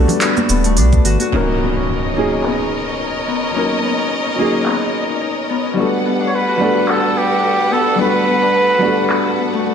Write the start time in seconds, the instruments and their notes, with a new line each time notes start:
Already playing: grand piano G3 B3 D4 F#4 A4, harp A3 B3 D4 F#4
0.08 open hi-hat, low conga, shaker
0.21 harp B3, clap, open hi-hat, shaker
0.37 harp F#4, high conga, shaker
0.49 sub bass D1, harp B3, open hi-hat, shaker
0.64 harp A3, open hi-hat, shaker
0.77 sub bass B1, harp D4, open hi-hat, shaker
0.93 kick, shaker
1.04 sub bass G1, harp F#4, open hi-hat, shaker
1.20 harp F#4, open hi-hat, high conga, shaker
1.29 grand piano F#3 C#4, harp A#3, string section A#4 C#5 D#5, impact
1.34 grand piano D#4 A#4
1.48 shaker
1.60 harp B3
1.75 harp C#4, open hi-hat, shaker
2.04 harp D#4, shaker
2.13 grand piano F#3 C#4, harp A#3
2.17 grand piano D#4 G#4
2.43 harp B3, clap
2.59 harp D#4
2.87 harp D#4
2.99 harp D#4
3.27 harp B3
3.43 harp C#4
3.52 grand piano F#3 C#4, harp A#3
3.57 grand piano D#4 A#4
3.83 harp B3
3.99 harp C#4
4.26 harp D#4
4.35 grand piano F#3 C#4, harp A#3
4.39 grand piano D#4 G#4
4.66 harp B3, clap
4.82 harp D#4
5.08 harp D#4, open hi-hat
5.21 harp D#4, open hi-hat
5.49 harp B3, open hi-hat
5.65 harp C#4
5.74 grand piano G3 B3 D4, harp A3, open hi-hat
5.78 string section G3 A4 B4 F#5, grand piano F#4 A4
6.04 harp B3, open hi-hat, shaker
6.20 harp D4
6.27 flugelhorn C#5
6.35 flugelhorn B4
6.48 harp F#4
6.57 grand piano G3 B3 D4, harp A3
6.62 grand piano A4 F#5
6.87 harp B3, flugelhorn A4, clap
7.03 harp F#4
7.16 flugelhorn G4, shaker
7.31 harp F#4
7.43 harp F#4, open hi-hat
7.71 harp B3, flugelhorn A4, shaker
7.86 harp D4
7.96 grand piano G3 B3 D4, harp A3
8.00 grand piano F#4 A4, flugelhorn B4
8.27 harp B3, shaker
8.42 harp D4
8.70 harp F#4
8.79 grand piano G3 B3 D4, harp A3, shaker
8.83 grand piano F#4 A4
9.09 harp B3, clap, open hi-hat
9.25 harp F#4
9.38 harp B3, open hi-hat, shaker
9.53 harp A3, open hi-hat
9.65 harp A3, open hi-hat, shaker